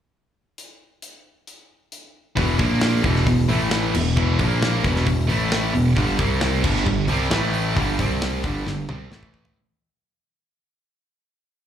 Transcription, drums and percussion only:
0.58 closed hi-hat medium
1.02 closed hi-hat medium
1.47 closed hi-hat medium
1.92 closed hi-hat medium
2.37 kick medium
2.37 open hi-hat medium
2.59 kick loud
2.59 open hi-hat medium
2.81 snare loud
2.81 open hi-hat medium
3.03 kick loud
3.03 open hi-hat medium
3.15 snare soft
3.26 kick medium
3.26 open hi-hat medium
3.49 open hi-hat medium
3.71 snare loud
3.71 open hi-hat medium
3.94 crash loud
4.17 kick loud
4.39 kick loud
4.39 open hi-hat medium
4.62 snare loud
4.62 open hi-hat medium
4.84 kick loud
4.84 open hi-hat medium
4.96 snare soft
5.06 kick medium
5.06 open hi-hat medium
5.29 open hi-hat medium
5.51 snare loud
5.51 open hi-hat medium
5.74 open hi-hat medium
5.96 kick medium
5.96 open hi-hat medium
6.19 kick loud
6.19 open hi-hat medium
6.41 snare loud
6.41 open hi-hat medium
6.64 kick medium
6.64 crash loud
6.76 snare soft
6.87 kick medium
7.08 open hi-hat medium
7.31 snare loud
7.31 open hi-hat medium
7.54 open hi-hat medium
7.76 kick loud
7.76 open hi-hat medium
7.99 kick loud
7.99 open hi-hat medium
8.22 snare loud
8.22 open hi-hat medium
8.44 kick loud
8.44 open hi-hat medium
8.67 snare medium
8.89 mid tom medium
9.12 snare medium
9.23 kick medium
9.34 kick medium
9.45 floor tom medium

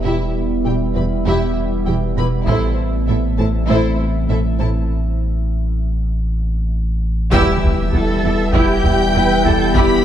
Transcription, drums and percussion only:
2.47 taiko medium
3.38 taiko soft
7.32 taiko medium
7.62 taiko low medium
7.93 taiko low medium
8.53 taiko medium
8.84 taiko low medium
9.45 taiko low medium
9.75 taiko loud

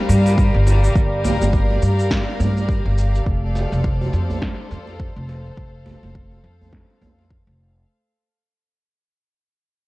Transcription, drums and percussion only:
0.09 djembe tone soft
0.09 shaker medium
0.26 djembe slap soft
0.26 shaker soft
0.38 kick medium
0.38 shaker soft
0.67 djembe slap medium
0.67 shaker medium
0.84 shaker soft
0.96 kick loud
0.96 shaker soft
1.24 djembe slap medium
1.24 djembe bass medium
1.24 shaker medium
1.42 djembe tone medium
1.42 shaker soft
1.53 kick medium
1.53 shaker soft
1.71 djembe tone medium
1.83 shaker medium
1.99 shaker soft
2.11 kick loud
2.11 snare medium
2.11 shaker soft
2.40 djembe bass medium
2.40 shaker medium
2.57 djembe slap soft
2.57 shaker soft
2.69 kick medium
2.69 shaker soft
2.86 djembe slap soft
2.98 shaker medium
3.15 shaker soft
3.26 kick medium
3.26 shaker soft
3.44 djembe tone soft
3.55 djembe slap medium
3.55 shaker medium
3.72 djembe tone medium
3.72 shaker soft
3.84 kick loud
3.84 shaker soft
4.01 djembe tone medium
4.13 shaker medium
4.30 djembe bass medium
4.30 shaker soft
4.42 kick loud
4.42 snare medium
4.42 shaker soft
4.70 djembe tone soft
4.70 shaker medium
4.87 djembe slap soft
4.87 shaker soft
5.00 kick medium
5.00 shaker soft
5.29 djembe slap medium
5.29 shaker medium
5.46 shaker soft
5.57 kick medium
5.86 djembe slap medium
5.86 djembe bass medium
5.86 shaker medium
6.03 djembe tone medium
6.03 shaker soft
6.15 kick loud
6.32 djembe tone medium
6.45 shaker medium
6.61 djembe bass medium
6.61 shaker soft
6.73 kick medium
6.73 snare medium
6.90 djembe slap soft
7.02 djembe bass medium
7.02 shaker medium
7.19 djembe slap soft
7.19 shaker soft
7.31 kick medium
7.48 djembe slap soft

